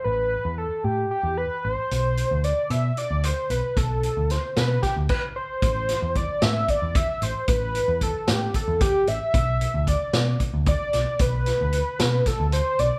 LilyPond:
<<
  \new Staff \with { instrumentName = "Analog synth lead" } { \time 7/8 \key a \minor \tempo 4 = 113 b'4 a'8 g'8 g'8 b'8 c''8~ | c''4 d''8 e''8 d''8 c''8 b'8 | a'4 c''8 b'8 g'8 b'8 c''8~ | c''4 d''8 e''8 d''8 e''8 c''8 |
b'4 a'8 g'8 a'8 g'8 e''8~ | e''4 d''4 r8 d''4 | b'2 a'8 c''8 d''8 | }
  \new Staff \with { instrumentName = "Picked electric bass" } { \clef bass \time 7/8 \key a \minor a,,8. e,8 r16 a,8 r16 e,8 r16 a,,16 r16 | b,,8. d,8 r16 b,8 r16 d,8 r16 b,,16 r16 | b,,8. d,8 r16 b,8 r16 d,16 r4 | a,,8. e,8 r16 a,8 r16 e,8 r16 a,,16 r16 |
a,,8. e,8 r16 a,8 r16 e,8 r16 a,,16 r16 | b,,8. d,8 r16 b,8 r16 d,8 r16 b,,16 r16 | b,,8. d,8 r16 b,8 r16 d,8 r16 b,,16 r16 | }
  \new DrumStaff \with { instrumentName = "Drums" } \drummode { \time 7/8 r4. r4 r4 | hh8 hh8 hh8 hh8 hh8 hh8 hh8 | <hh bd>8 hh8 <hh sn>8 <hh sn>8 <hh bd sn>8 <cymc bd>4 | <hh bd>8 <hh sn>8 <hh bd>8 <hh sn>8 <hh bd>8 <hh bd>8 hh8 |
<hh bd>8 hh8 <hh bd>8 <hh sn>8 <hh bd>8 <hh bd>8 hh8 | <hh bd>8 hh8 <hh bd>8 <hh sn>8 <hh bd>8 <hh bd>8 <hh sn>8 | <hh bd>8 <hh sn>8 hh8 <hh sn>8 <hh bd sn>8 hh8 hh8 | }
>>